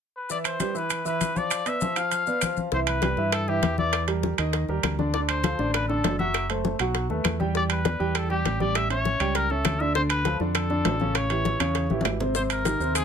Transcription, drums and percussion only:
0.30 high conga, maracas
0.44 high conga, high timbale, claves, maracas
0.60 high conga, high timbale, maracas
0.75 high conga, maracas
0.90 high conga, high timbale, claves, maracas
1.06 high conga, maracas
1.21 high conga, high timbale, maracas
1.36 high conga, maracas
1.51 high conga, high timbale, claves, maracas
1.66 high conga, high timbale, maracas
1.81 high conga, maracas
1.96 high timbale, claves, maracas
2.11 high conga, high timbale, maracas
2.27 high conga, maracas
2.41 high conga, high timbale, claves, maracas
2.57 high conga, maracas
2.72 high bongo, high conga
2.87 high conga, high timbale, claves
3.02 high bongo, high conga, high timbale
3.17 high bongo, high conga
3.32 high bongo, high conga, high timbale, claves
3.48 high bongo, high conga
3.63 high bongo, low bongo, high conga, high timbale
3.78 high bongo, high conga
3.93 high bongo, high conga, high timbale, claves
4.08 high bongo, high conga, high timbale
4.23 high bongo, high conga
4.38 high timbale, claves
4.53 high bongo, high conga, high timbale
4.69 high bongo, high conga
4.83 high bongo, low bongo, high conga, high timbale, claves
4.99 high bongo, high conga
5.14 high bongo, high conga
5.29 high conga, high timbale, claves
5.44 high bongo, high conga, high timbale
5.59 high bongo, high conga
5.74 high bongo, high conga, high timbale, claves
5.89 high bongo, high conga
6.04 high bongo, low bongo, high conga, high timbale, low timbale
6.19 high bongo, high conga
6.34 high bongo, high conga, high timbale, claves
6.50 high bongo, high conga, high timbale
6.65 high bongo, high conga
6.79 high timbale, claves
6.95 high bongo, high conga, high timbale
7.10 high bongo, high conga
7.24 high bongo, low bongo, high conga, high timbale, claves
7.40 high bongo, high conga
7.55 high bongo, high conga
7.70 high conga, high timbale, claves
7.85 high bongo, high conga, high timbale
8.00 high bongo, high conga
8.15 high bongo, high conga, high timbale, claves
8.30 high bongo, high conga
8.45 high bongo, low bongo, high conga, high timbale
8.60 high bongo, high conga
8.75 high bongo, high conga, high timbale, claves
8.90 high bongo, high conga, high timbale
9.05 high bongo, high conga
9.20 high timbale, claves
9.35 high bongo, high conga, high timbale
9.50 high bongo, high conga
9.65 high bongo, low bongo, high conga, high timbale, claves
9.80 high bongo
9.95 high bongo, high conga
10.09 high conga, high timbale, claves
10.25 high bongo, high conga, high timbale
10.40 high bongo, high conga
10.55 high bongo, high conga, high timbale, claves
10.70 high bongo, high conga
10.85 high bongo, low bongo, high conga, high timbale, low timbale
11.00 high bongo, high conga
11.15 high bongo, high conga, high timbale, claves
11.30 high bongo, high conga, high timbale
11.45 high bongo, high conga
11.60 high timbale, claves
11.75 high bongo, high conga, high timbale
11.90 high bongo, high conga
12.01 high conga
12.05 high bongo, low bongo, high timbale, low timbale, claves
12.20 high bongo, low conga
12.35 high bongo, high conga, maracas
12.50 high conga, high timbale, claves, maracas
12.65 high bongo, high conga, high timbale, maracas
12.80 high bongo, high conga, maracas
12.95 high bongo, high conga, high timbale, claves, maracas

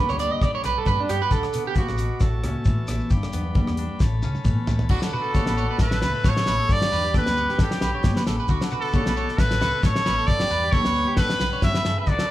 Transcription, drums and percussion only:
0.09 cross-stick, shekere
0.19 closed hi-hat, high conga, shekere
0.41 kick, cross-stick, shekere
0.64 cross-stick, closed hi-hat, shekere
0.85 kick, muted conga, high conga, shekere
1.09 cross-stick, closed hi-hat, shekere
1.22 shekere
1.31 kick, muted conga, shekere
1.43 cross-stick, shekere
1.53 closed hi-hat, muted conga, shekere
1.75 kick, high conga, shekere
1.88 cross-stick, shekere
1.97 closed hi-hat, shekere
2.20 kick, cross-stick, shekere
2.43 cross-stick, closed hi-hat, high conga
2.65 kick, muted conga, shekere
2.88 cross-stick, closed hi-hat, high conga, shekere
3.10 kick, muted conga, shekere
3.23 cross-stick, shekere
3.32 closed hi-hat, muted conga, low conga, shekere
3.55 kick, high conga, low conga, shekere
3.67 cross-stick, shekere
3.77 closed hi-hat, high conga
4.00 kick, snare, muted conga, shekere
4.23 high tom, shekere
4.35 high tom, shekere
4.45 kick, mid tom, muted conga, high conga, shekere
4.67 floor tom, shekere
4.79 floor tom, shekere
4.89 kick, crash, shekere
5.02 snare, shekere
5.13 muted conga
5.34 kick, snare, high conga, shekere
5.46 snare, shekere
5.58 shekere
5.78 kick, snare, muted conga, shekere
5.91 snare
6.02 snare, high conga, shekere
6.24 kick, snare, muted conga, shekere
6.37 snare
6.46 snare, high conga, shekere
6.61 shekere
6.69 kick, muted conga, shekere
6.82 snare, shekere
6.92 muted conga, low conga, shekere
7.14 kick, snare, high conga, low conga, shekere
7.26 snare, shekere
7.37 high conga, shekere
7.49 snare
7.59 kick, snare, shekere
7.71 snare
7.81 snare, shekere
8.03 kick, snare, muted conga, high conga, shekere
8.16 snare
8.27 snare, shekere
8.39 shekere
8.48 kick, muted conga, shekere
8.61 snare, shekere
8.71 muted conga, shekere
8.93 kick, high conga, shekere
9.06 snare, shekere
9.16 shekere
9.28 snare
9.38 kick, snare, shekere
9.51 snare
9.61 snare, high conga, shekere
9.83 kick, snare, muted conga, shekere
9.96 snare
10.05 snare, high conga, shekere
10.18 shekere
10.28 kick, shekere
10.40 snare, shekere
10.50 muted conga, low conga, shekere
10.72 kick, snare, high conga, low conga, shekere
10.85 snare
10.94 high conga, shekere
11.17 kick, snare, muted conga, shekere
11.30 snare
11.40 snare, shekere
11.53 shekere
11.62 kick, snare, muted conga, high conga, shekere
11.74 snare
11.85 snare, shekere
12.07 kick, muted conga, shekere
12.19 snare, shekere

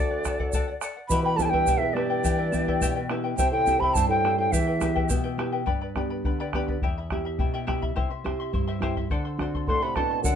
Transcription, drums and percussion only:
0.25 bombo rim, bombo low, shaker
0.40 bombo low
0.53 bombo low, shaker
0.81 bombo rim, shaker
1.10 bombo low, shaker
1.39 bombo low, shaker
1.53 bombo low
1.67 bombo low, shaker
1.97 bombo rim
2.25 bombo low, shaker
2.53 bombo low, shaker
2.68 bombo low
2.81 bombo low, shaker
3.09 bombo rim
3.38 bombo low, shaker
3.67 bombo low, shaker
3.81 bombo low
3.95 bombo low, shaker
4.25 bombo rim
4.53 bombo low, shaker
4.81 bombo rim, bombo low, shaker
4.96 bombo low
5.10 bombo low, shaker
5.39 bombo rim
5.67 bombo low
5.96 bombo rim, bombo low
6.24 bombo low
6.53 bombo rim, bombo low
6.68 bombo low
6.82 bombo low
7.10 bombo rim, bombo low
7.39 bombo low
7.68 bombo rim, bombo low
7.83 bombo low
7.97 bombo low
8.26 bombo rim, bombo low
8.54 bombo low
8.82 bombo rim, bombo low
8.97 bombo low
9.10 bombo low
9.39 bombo rim, bombo low
9.54 bombo low
9.67 bombo low
9.96 bombo rim, bombo low
10.24 bombo low, shaker

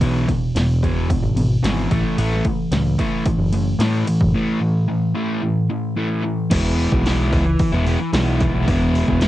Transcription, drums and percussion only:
0.01 kick, ride
0.28 kick, snare, ride
0.56 snare, ride
0.83 kick, ride
1.10 kick, ride
1.37 ride
1.64 snare, ride
1.91 kick, ride
2.18 ride
2.33 snare
2.45 kick, ride
2.72 snare, ride
2.99 kick, ride
3.26 kick, ride
3.53 ride
3.80 snare, ride
4.07 ride
4.21 kick
6.51 kick, open hi-hat, crash
6.79 open hi-hat
6.92 kick
7.06 snare, open hi-hat
7.33 kick, open hi-hat
7.59 kick, open hi-hat
7.86 open hi-hat
8.13 snare, open hi-hat
8.40 kick, open hi-hat
8.68 kick, open hi-hat
8.95 open hi-hat
9.08 kick
9.21 snare, open hi-hat

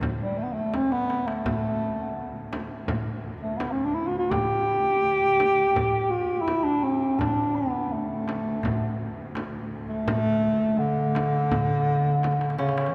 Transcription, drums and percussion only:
0.01 darbuka dum, frame drum
0.38 darbuka ka
0.74 darbuka tek, frame drum
0.92 darbuka ka
1.10 darbuka tek
1.28 darbuka ka
1.46 darbuka dum, frame drum
2.53 darbuka tek, frame drum
2.88 frame drum, darbuka dum
3.60 darbuka tek, frame drum
3.97 darbuka ka
4.31 frame drum, darbuka dum
5.40 frame drum
5.76 darbuka dum, frame drum
6.48 darbuka tek, frame drum
6.83 darbuka ka
7.19 darbuka dum, frame drum
8.28 darbuka tek, frame drum
8.63 darbuka dum, frame drum
9.35 darbuka tek, frame drum
10.08 darbuka dum, frame drum
10.25 darbuka ka
10.98 darbuka ka
11.15 darbuka tek, frame drum
11.52 frame drum, darbuka dum
11.70 darbuka ka
11.88 darbuka ka
12.23 darbuka tek, frame drum
12.32 darbuka ka
12.41 darbuka tek
12.50 darbuka ka
12.59 darbuka tek
12.69 darbuka ka
12.78 darbuka tek
12.86 darbuka ka

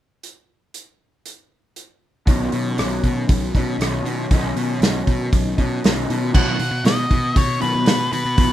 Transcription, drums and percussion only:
0.23 closed hi-hat
0.74 closed hi-hat
1.26 closed hi-hat
1.76 closed hi-hat
2.27 kick, open hi-hat
2.52 open hi-hat
2.78 cross-stick, open hi-hat
3.04 kick, open hi-hat
3.29 kick, open hi-hat
3.55 kick, open hi-hat
3.81 cross-stick, open hi-hat
4.06 open hi-hat
4.31 kick, open hi-hat
4.57 open hi-hat
4.82 snare, open hi-hat
5.07 kick, open hi-hat
5.33 kick, open hi-hat
5.58 kick, open hi-hat
5.84 snare, open hi-hat
6.10 open hi-hat
6.35 kick, crash
6.59 open hi-hat
6.85 snare, open hi-hat
7.11 kick, open hi-hat
7.36 kick, open hi-hat
7.61 open hi-hat
7.86 snare, open hi-hat
8.13 open hi-hat
8.38 kick, open hi-hat

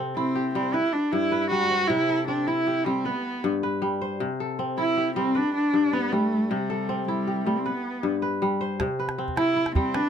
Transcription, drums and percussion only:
8.80 calabash thump, calabash click
9.09 calabash click
9.19 calabash click
9.28 calabash thump
9.37 calabash click
9.66 calabash click
9.75 calabash thump, calabash click
9.94 calabash click

